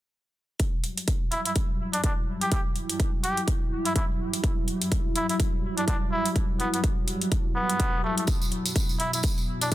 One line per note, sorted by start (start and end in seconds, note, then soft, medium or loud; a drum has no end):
0.60 9.74 F#3 medium
0.60 8.24 G3 medium
0.60 9.74 E4 medium
0.60 kick loud
0.60 closed hi-hat medium
0.84 closed hi-hat soft
0.98 closed hi-hat soft
1.08 kick medium
1.08 closed hi-hat medium
1.32 1.41 E4 medium
1.32 closed hi-hat medium
1.45 1.52 E4 medium
1.45 closed hi-hat soft
1.56 kick loud
1.56 closed hi-hat medium
1.93 2.00 D4 medium
1.93 closed hi-hat soft
2.04 2.13 D4 medium
2.04 kick loud
2.04 closed hi-hat medium
2.41 2.48 G4 medium
2.41 closed hi-hat soft
2.52 2.61 G4 medium
2.52 kick loud
2.52 closed hi-hat medium
2.76 closed hi-hat soft
2.90 closed hi-hat soft
3.00 kick loud
3.00 closed hi-hat medium
3.24 3.41 G4 medium
3.24 closed hi-hat medium
3.37 closed hi-hat soft
3.48 kick loud
3.48 closed hi-hat medium
3.85 3.92 E4 medium
3.85 closed hi-hat soft
3.96 4.05 E4 medium
3.96 kick loud
3.96 closed hi-hat medium
4.33 closed hi-hat soft
4.44 kick loud
4.44 closed hi-hat medium
4.68 closed hi-hat soft
4.82 closed hi-hat soft
4.92 kick loud
4.92 closed hi-hat medium
5.16 5.25 E4 medium
5.16 closed hi-hat medium
5.29 5.36 E4 medium
5.29 closed hi-hat soft
5.40 kick loud
5.40 closed hi-hat medium
5.78 5.84 D4 medium
5.78 closed hi-hat soft
5.88 5.97 D4 medium
5.88 kick loud
5.88 closed hi-hat medium
6.12 6.29 E4 medium
6.26 closed hi-hat soft
6.36 kick loud
6.36 closed hi-hat medium
6.60 6.69 B3 medium
6.60 closed hi-hat soft
6.74 6.80 B3 medium
6.74 closed hi-hat soft
6.84 kick loud
6.84 closed hi-hat medium
7.08 closed hi-hat medium
7.21 closed hi-hat soft
7.32 kick loud
7.32 closed hi-hat medium
7.56 8.02 B3 medium
7.70 closed hi-hat soft
7.80 kick loud
7.80 closed hi-hat medium
8.04 8.12 A3 medium
8.17 8.24 A3 medium
8.17 closed hi-hat soft
8.27 9.74 B2 medium
8.27 kick loud
8.27 closed hi-hat medium
8.27 tambourine medium
8.42 tambourine soft
8.52 closed hi-hat soft
8.66 closed hi-hat soft
8.66 tambourine medium
8.76 kick medium
8.76 closed hi-hat medium
8.76 tambourine medium
8.89 tambourine soft
8.99 9.08 E4 medium
8.99 closed hi-hat medium
9.13 9.20 E4 medium
9.13 closed hi-hat soft
9.13 tambourine medium
9.23 kick loud
9.23 closed hi-hat medium
9.23 tambourine medium
9.38 tambourine soft
9.61 9.68 D4 medium
9.61 closed hi-hat soft
9.61 tambourine medium